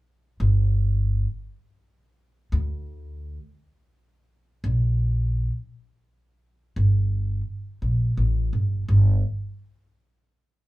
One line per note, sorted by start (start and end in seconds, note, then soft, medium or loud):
0.40 1.25 G1 medium
2.52 3.37 D2 medium
4.64 5.49 A#1 medium
6.76 7.40 G1 medium
7.82 8.14 A#1 medium
8.17 8.50 A1 medium
8.53 8.85 G1 medium
8.89 9.21 G1 medium